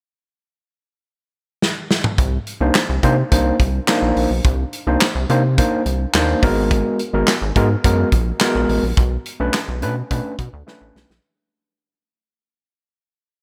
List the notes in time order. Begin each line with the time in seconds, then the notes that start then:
1.62 snare
1.91 snare
2.04 mid tom
2.18 C2, kick, closed hi-hat
2.47 closed hi-hat
2.61 C2 A#3 D4 D#4 C5
2.75 snare, clap, closed hi-hat
2.89 C2
3.03 C3 A#3 D4 D#4 C5, kick, closed hi-hat
3.31 C2 A#3 D4 D#4 C5, kick, closed hi-hat
3.60 C2, kick, closed hi-hat
3.88 A#3 D4 D#4 C5, snare, clap, closed hi-hat
4.02 A#1
4.16 A#1, open hi-hat
4.30 B1
4.45 C2, kick, closed hi-hat
4.73 closed hi-hat
4.87 C2 A#3 D4 D#4 C5
5.01 snare, clap, closed hi-hat
5.15 C2
5.29 C3 A#3 D4 D#4 C5, closed hi-hat
5.58 A#3 D4 D#4 C5, kick, closed hi-hat
5.86 C2, closed hi-hat
6.14 D#2 A#3 D4 D#4 C5, snare, clap, closed hi-hat
6.43 G#1 G#3 B3 F#4 A#4, kick, open hi-hat
6.71 kick, closed hi-hat
6.99 closed hi-hat
7.13 G#1 G#3 B3 F#4 A#4
7.28 snare, clap, closed hi-hat
7.42 G#1
7.56 G#2 G#3 B3 F#4 A#4, kick, closed hi-hat
7.84 F#2 G#3 B3 F#4 A#4, kick, closed hi-hat
8.12 A#1, kick, closed hi-hat
8.40 G#3 B3 F#4 A#4, snare, clap, closed hi-hat
8.55 A#1
8.69 A1, open hi-hat
8.83 A#1
8.97 B1, kick, closed hi-hat
9.26 closed hi-hat
9.40 B1 A3 C#4 D4 B4
9.54 snare, clap, closed hi-hat
9.68 B1
9.82 B2 A3 C#4 D4 B4, closed hi-hat
10.11 B2 A3 C#4 D4 B4, kick, closed hi-hat
10.39 B2, kick, closed hi-hat
10.53 D2
10.67 A3 C#4 D4 B4, snare
10.81 A1
10.95 B1, snare
11.10 A#1, snare